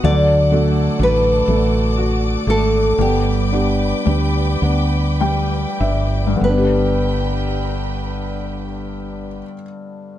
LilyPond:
<<
  \new Staff \with { instrumentName = "String section" } { \time 6/8 \key g \major \tempo 4. = 35 << { <d'' d'''>2.~ | <d'' d'''>2. | <d' g' b' g''>2. | } \\ { <a' fis''>2. | <b' g''>2. | r2. | } >> }
  \new Staff \with { instrumentName = "Nylon-string guitar" } { \time 6/8 \key g \major d''4 b'4 r8 a'8 | g'2~ g'8 r8 | b'2. | }
  \new Staff \with { instrumentName = "Felt piano" } { \time 6/8 \key g \major fis8 <a d' fis'>8 d'8 a4. | b8 <b d' g'>8 d'8 b4. | <b d' g'>2. | }
  \new Staff \with { instrumentName = "Upright piano" } { \time 6/8 \key g \major d8 a8 fis'8 a8 fis'8 a8 | g8 d'8 g8 d'8 <g g''>8 <d' e''>8 | <g, d g b d'>2. | }
  \new Staff \with { instrumentName = "Fretless electric bass" } { \clef bass \time 6/8 \key g \major d,4 a,,8 a,,4 aes,,8 | g,,4 d,8 d,4 g,,8 | g,,2. | }
>>